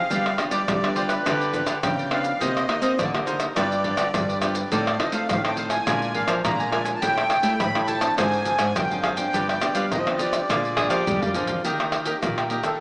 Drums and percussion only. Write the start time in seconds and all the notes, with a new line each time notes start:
0.11 pandeiro, maracas, surdo
0.26 pandeiro, tamborim, maracas
0.38 pandeiro, tamborim
0.51 pandeiro, maracas
0.68 pandeiro, tamborim, maracas, surdo
0.84 pandeiro, tamborim, maracas
0.96 pandeiro
1.09 pandeiro, tamborim, maracas
1.26 pandeiro, tamborim, maracas, surdo
1.41 pandeiro, maracas
1.54 pandeiro, maracas, surdo
1.67 pandeiro, tamborim, maracas
1.83 pandeiro, tamborim, maracas, surdo
1.99 pandeiro, maracas
2.11 pandeiro, tamborim
2.24 pandeiro, maracas
2.41 pandeiro, maracas, surdo
2.57 pandeiro, tamborim, maracas
2.69 pandeiro, tamborim
2.82 pandeiro, maracas
2.99 pandeiro, tamborim, maracas, surdo
3.15 pandeiro, tamborim, maracas
3.27 pandeiro, maracas
3.40 pandeiro, tamborim, maracas
3.56 pandeiro, tamborim, maracas, surdo
3.72 pandeiro, maracas
3.84 pandeiro, surdo
3.97 pandeiro, tamborim, maracas
4.14 pandeiro, tamborim, maracas, surdo
4.30 pandeiro, maracas
4.42 pandeiro, tamborim, maracas
4.55 pandeiro, maracas
4.72 pandeiro, maracas, surdo
4.87 pandeiro, tamborim, maracas
5.00 pandeiro, tamborim
5.12 pandeiro, maracas
5.29 pandeiro, tamborim, maracas, surdo
5.45 pandeiro, tamborim, maracas
5.57 pandeiro
5.70 pandeiro, tamborim, maracas
5.87 pandeiro, tamborim, maracas, surdo
6.02 pandeiro, maracas
6.14 pandeiro, surdo
6.28 pandeiro, tamborim, maracas
6.45 pandeiro, tamborim, maracas, surdo
6.60 pandeiro, maracas
6.72 pandeiro, tamborim
6.85 pandeiro, maracas
7.02 pandeiro, maracas, surdo
7.18 pandeiro, tamborim, maracas
7.30 pandeiro, tamborim
7.43 pandeiro, maracas
7.60 pandeiro, tamborim, maracas, surdo
7.75 pandeiro, tamborim, maracas
7.88 pandeiro, maracas
8.01 pandeiro, tamborim, maracas
8.18 pandeiro, tamborim, maracas, surdo
8.33 pandeiro, maracas
8.45 pandeiro, maracas
8.59 pandeiro, tamborim, maracas
8.76 pandeiro, tamborim, maracas, surdo
8.92 pandeiro, maracas
9.04 pandeiro, tamborim
9.17 pandeiro, maracas
9.34 pandeiro, maracas, surdo
9.49 pandeiro, tamborim, maracas
9.61 pandeiro, tamborim, maracas
9.75 pandeiro, maracas
9.92 pandeiro, tamborim, maracas, surdo
10.07 pandeiro, tamborim, maracas
10.19 pandeiro, maracas
10.33 pandeiro, tamborim, maracas
10.50 pandeiro, tamborim, maracas, surdo
10.65 pandeiro, maracas
10.77 pandeiro, tamborim, surdo
10.90 pandeiro, tamborim, maracas
11.07 surdo, pandeiro, maracas
11.22 surdo, pandeiro, maracas
11.34 pandeiro, maracas, surdo
11.47 pandeiro, maracas, surdo
11.65 pandeiro, maracas, surdo
11.80 pandeiro, tamborim, maracas
11.92 pandeiro, tamborim
12.05 pandeiro, maracas
12.23 pandeiro, tamborim, maracas, surdo
12.38 pandeiro, tamborim, maracas
12.50 pandeiro
12.63 pandeiro, tamborim, maracas